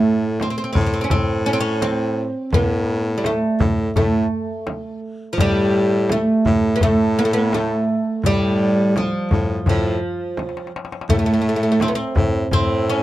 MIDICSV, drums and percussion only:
0, 0, Header, 1, 3, 480
1, 0, Start_track
1, 0, Tempo, 713436
1, 1707, Time_signature, 4, 2, 24, 8
1, 8765, End_track
2, 0, Start_track
2, 0, Title_t, "Darbuka"
2, 32, Note_on_c, 9, 62, 21
2, 99, Note_off_c, 9, 62, 0
2, 153, Note_on_c, 9, 62, 22
2, 220, Note_off_c, 9, 62, 0
2, 277, Note_on_c, 9, 63, 65
2, 344, Note_off_c, 9, 63, 0
2, 513, Note_on_c, 9, 64, 78
2, 581, Note_off_c, 9, 64, 0
2, 635, Note_on_c, 9, 62, 23
2, 702, Note_off_c, 9, 62, 0
2, 745, Note_on_c, 9, 64, 80
2, 812, Note_off_c, 9, 64, 0
2, 1226, Note_on_c, 9, 63, 69
2, 1293, Note_off_c, 9, 63, 0
2, 1703, Note_on_c, 9, 64, 74
2, 1770, Note_off_c, 9, 64, 0
2, 1944, Note_on_c, 9, 62, 22
2, 2011, Note_off_c, 9, 62, 0
2, 2064, Note_on_c, 9, 62, 23
2, 2132, Note_off_c, 9, 62, 0
2, 2184, Note_on_c, 9, 63, 68
2, 2252, Note_off_c, 9, 63, 0
2, 2424, Note_on_c, 9, 64, 77
2, 2491, Note_off_c, 9, 64, 0
2, 2546, Note_on_c, 9, 62, 23
2, 2613, Note_off_c, 9, 62, 0
2, 2663, Note_on_c, 9, 64, 83
2, 2730, Note_off_c, 9, 64, 0
2, 3140, Note_on_c, 9, 63, 67
2, 3207, Note_off_c, 9, 63, 0
2, 3618, Note_on_c, 9, 64, 78
2, 3686, Note_off_c, 9, 64, 0
2, 3861, Note_on_c, 9, 62, 27
2, 3928, Note_off_c, 9, 62, 0
2, 3981, Note_on_c, 9, 62, 27
2, 4048, Note_off_c, 9, 62, 0
2, 4100, Note_on_c, 9, 63, 63
2, 4167, Note_off_c, 9, 63, 0
2, 4342, Note_on_c, 9, 64, 69
2, 4409, Note_off_c, 9, 64, 0
2, 4464, Note_on_c, 9, 62, 24
2, 4531, Note_off_c, 9, 62, 0
2, 4581, Note_on_c, 9, 64, 78
2, 4648, Note_off_c, 9, 64, 0
2, 5065, Note_on_c, 9, 63, 67
2, 5132, Note_off_c, 9, 63, 0
2, 5548, Note_on_c, 9, 64, 75
2, 5615, Note_off_c, 9, 64, 0
2, 5666, Note_on_c, 9, 62, 23
2, 5733, Note_off_c, 9, 62, 0
2, 5789, Note_on_c, 9, 62, 24
2, 5856, Note_off_c, 9, 62, 0
2, 5908, Note_on_c, 9, 62, 22
2, 5975, Note_off_c, 9, 62, 0
2, 6032, Note_on_c, 9, 63, 61
2, 6099, Note_off_c, 9, 63, 0
2, 6272, Note_on_c, 9, 64, 82
2, 6339, Note_off_c, 9, 64, 0
2, 6507, Note_on_c, 9, 64, 92
2, 6574, Note_off_c, 9, 64, 0
2, 6753, Note_on_c, 9, 62, 24
2, 6820, Note_off_c, 9, 62, 0
2, 6991, Note_on_c, 9, 63, 54
2, 7057, Note_on_c, 9, 62, 56
2, 7058, Note_off_c, 9, 63, 0
2, 7112, Note_on_c, 9, 63, 55
2, 7124, Note_off_c, 9, 62, 0
2, 7179, Note_off_c, 9, 63, 0
2, 7180, Note_on_c, 9, 62, 59
2, 7241, Note_on_c, 9, 63, 68
2, 7247, Note_off_c, 9, 62, 0
2, 7298, Note_on_c, 9, 62, 70
2, 7308, Note_off_c, 9, 63, 0
2, 7350, Note_on_c, 9, 63, 67
2, 7366, Note_off_c, 9, 62, 0
2, 7410, Note_on_c, 9, 62, 78
2, 7417, Note_off_c, 9, 63, 0
2, 7471, Note_on_c, 9, 64, 79
2, 7477, Note_off_c, 9, 62, 0
2, 7539, Note_off_c, 9, 64, 0
2, 7716, Note_on_c, 9, 62, 25
2, 7783, Note_off_c, 9, 62, 0
2, 7830, Note_on_c, 9, 62, 22
2, 7897, Note_off_c, 9, 62, 0
2, 7947, Note_on_c, 9, 63, 74
2, 8014, Note_off_c, 9, 63, 0
2, 8189, Note_on_c, 9, 64, 83
2, 8256, Note_off_c, 9, 64, 0
2, 8424, Note_on_c, 9, 64, 87
2, 8492, Note_off_c, 9, 64, 0
2, 8765, End_track
3, 0, Start_track
3, 0, Title_t, "Frame drum"
3, 268, Note_on_c, 9, 64, 60
3, 335, Note_off_c, 9, 64, 0
3, 505, Note_on_c, 9, 64, 78
3, 572, Note_off_c, 9, 64, 0
3, 740, Note_on_c, 9, 64, 80
3, 807, Note_off_c, 9, 64, 0
3, 1222, Note_on_c, 9, 64, 59
3, 1290, Note_off_c, 9, 64, 0
3, 1699, Note_on_c, 9, 64, 86
3, 1767, Note_off_c, 9, 64, 0
3, 2181, Note_on_c, 9, 64, 64
3, 2248, Note_off_c, 9, 64, 0
3, 2425, Note_on_c, 9, 64, 91
3, 2492, Note_off_c, 9, 64, 0
3, 2667, Note_on_c, 9, 64, 81
3, 2734, Note_off_c, 9, 64, 0
3, 3142, Note_on_c, 9, 64, 63
3, 3209, Note_off_c, 9, 64, 0
3, 3622, Note_on_c, 9, 64, 75
3, 3689, Note_off_c, 9, 64, 0
3, 4101, Note_on_c, 9, 64, 73
3, 4169, Note_off_c, 9, 64, 0
3, 4344, Note_on_c, 9, 64, 77
3, 4411, Note_off_c, 9, 64, 0
3, 4585, Note_on_c, 9, 64, 68
3, 4652, Note_off_c, 9, 64, 0
3, 5067, Note_on_c, 9, 64, 64
3, 5134, Note_off_c, 9, 64, 0
3, 5541, Note_on_c, 9, 64, 64
3, 5608, Note_off_c, 9, 64, 0
3, 6027, Note_on_c, 9, 64, 68
3, 6094, Note_off_c, 9, 64, 0
3, 6263, Note_on_c, 9, 64, 74
3, 6331, Note_off_c, 9, 64, 0
3, 6500, Note_on_c, 9, 64, 76
3, 6567, Note_off_c, 9, 64, 0
3, 6979, Note_on_c, 9, 64, 64
3, 7047, Note_off_c, 9, 64, 0
3, 7462, Note_on_c, 9, 64, 76
3, 7529, Note_off_c, 9, 64, 0
3, 7939, Note_on_c, 9, 64, 73
3, 8006, Note_off_c, 9, 64, 0
3, 8179, Note_on_c, 9, 64, 80
3, 8246, Note_off_c, 9, 64, 0
3, 8420, Note_on_c, 9, 64, 69
3, 8487, Note_off_c, 9, 64, 0
3, 8765, End_track
0, 0, End_of_file